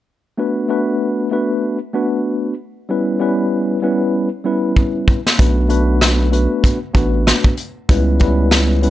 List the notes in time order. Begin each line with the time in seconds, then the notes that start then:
0.38 A3 B3 D4 F#4 B4
0.68 A3 B3 D4 F#4 B4
1.31 A3 B3 D4 F#4 B4
1.93 A3 B3 D4 F#4 B4
2.89 G3 B3 C#4 E4 B4
3.20 G3 B3 C#4 E4 B4
3.82 G3 B3 C#4 E4 B4
4.44 G3 B3 C#4 E4 B4
4.76 kick
5.08 kick
5.27 snare
5.38 B1 A3 B3 D4 F#4 B4, kick, closed hi-hat
5.68 A3 B3 D4 F#4 B4, closed hi-hat
6.01 cross-stick, snare, closed hi-hat
6.31 A3 B3 D4 F#4 B4, closed hi-hat
6.64 kick, closed hi-hat
6.93 A1 A3 B3 D4 F#4 B4, kick, closed hi-hat
7.27 cross-stick, snare, closed hi-hat
7.44 kick
7.57 closed hi-hat
7.89 C#2 G3 B3 C#4 E4 B4, kick, closed hi-hat
8.19 G3 B3 C#4 E4 B4, kick, closed hi-hat
8.51 cross-stick, snare, closed hi-hat
8.82 G3 B3 C#4 E4 B4, closed hi-hat